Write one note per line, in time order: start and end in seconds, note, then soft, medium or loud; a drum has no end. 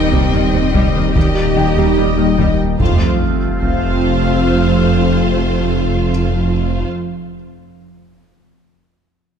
0.00 1.16 D#1 medium
0.00 1.12 D#3 medium
0.00 1.12 G3 medium
0.00 1.15 G3 medium
0.00 1.12 C4 medium
0.00 1.12 D#4 medium
0.00 1.14 D#4 medium
0.00 2.79 G4 medium
0.00 1.11 D#5 medium
0.00 1.12 D#5 medium
0.00 0.29 F5 soft
0.00 1.15 G5 medium
0.13 0.21 D#2 medium
0.13 0.25 C3 medium
0.13 0.32 G3 medium
0.13 taiko medium
0.33 0.41 D#2 soft
0.33 0.41 D#3 soft
0.33 0.46 G3 medium
0.54 0.62 D#2 soft
0.54 0.62 C3 soft
0.54 0.67 C4 medium
0.74 0.82 D#2 medium
0.74 0.87 C3 medium
0.74 0.93 G3 medium
0.74 taiko medium
0.95 1.03 D#2 soft
0.95 1.03 D#3 soft
0.95 1.07 C4 medium
1.14 2.76 D#1 medium
1.14 1.24 D#2 medium
1.14 2.45 D#3 soft
1.14 1.28 D#3 medium
1.14 1.34 G3 soft
1.14 2.45 G3 soft
1.14 2.76 G3 medium
1.14 1.88 A#3 soft
1.14 1.88 D#4 soft
1.14 2.76 D#4 medium
1.14 2.39 G4 medium
1.14 2.57 D#5 soft
1.14 2.76 D#5 medium
1.14 2.57 G5 soft
1.14 taiko medium
1.56 1.65 D#2 soft
1.56 1.65 D#3 soft
1.56 1.69 D#4 medium
1.56 2.76 G5 soft
1.76 1.85 D#2 medium
1.76 1.89 D#3 medium
1.76 1.96 G3 soft
1.96 2.06 D#2 soft
1.96 2.04 D#3 soft
1.96 2.10 G3 medium
1.96 2.36 D#4 soft
2.17 2.26 D#2 soft
2.17 2.25 D#3 soft
2.17 2.30 A#3 medium
2.37 2.47 D#2 soft
2.37 2.51 D#3 medium
2.37 2.57 G3 soft
2.37 2.80 A#3 soft
2.37 taiko medium
2.79 3.03 F1 medium
2.79 3.04 F2 soft
2.79 6.84 C3 soft
2.79 6.84 F3 soft
2.79 3.04 A3 soft
2.79 6.84 A3 soft
2.79 6.85 A3 medium
2.79 6.85 C4 medium
2.79 6.85 F4 soft
2.79 6.85 F4 medium
2.79 3.04 F4 medium
2.79 3.04 C5 soft
2.79 6.84 F5 medium
2.79 3.04 F5 soft
2.79 taiko soft
2.79 sub drop medium
3.62 6.85 F1 medium
3.62 6.85 F2 medium
3.62 6.85 A3 soft
3.62 6.85 F4 medium
3.62 6.85 C5 soft
3.62 6.85 F5 medium
3.62 taiko soft